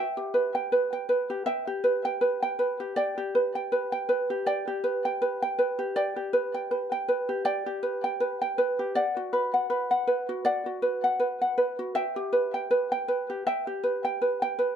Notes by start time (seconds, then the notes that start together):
Already playing: B4 E5 G5
0.17 G4
0.34 B4
0.55 G5
0.72 B4
0.93 G5
1.09 B4
1.30 G4
1.46 E5 G5
1.67 G4
1.84 B4
2.05 G5
2.21 B4
2.43 G5
2.59 B4
2.80 G4
2.96 D5 G5
3.18 G4
3.35 B4
3.55 G5
3.72 B4
3.92 G5
4.09 B4
4.30 G4
4.46 D5 G5
4.68 G4
4.84 B4
5.05 G5
5.22 B4
5.42 G5
5.59 B4
5.79 G4
5.96 D5 G5
6.16 G4
6.33 B4
6.54 G5
6.71 B4
6.92 G5
7.08 B4
7.29 G4
7.45 D5 G5
7.66 G4
7.83 B4
8.04 G5
8.20 B4
8.42 G5
8.58 B4
8.79 G4
8.95 D5 F#5
9.17 F#4
9.33 B4
9.54 F#5
9.70 B4
9.91 F#5
10.07 B4
10.29 F#4
10.45 D5 F#5
10.66 F#4
10.82 B4
11.04 F#5
11.20 B4
11.42 F#5
11.58 B4
11.79 F#4
11.95 E5 G5
12.16 G4
12.33 B4
12.54 G5
12.71 B4
12.92 G5
13.08 B4
13.30 G4
13.47 E5 G5
13.67 G4
13.84 B4
14.05 G5
14.22 B4
14.42 G5
14.59 B4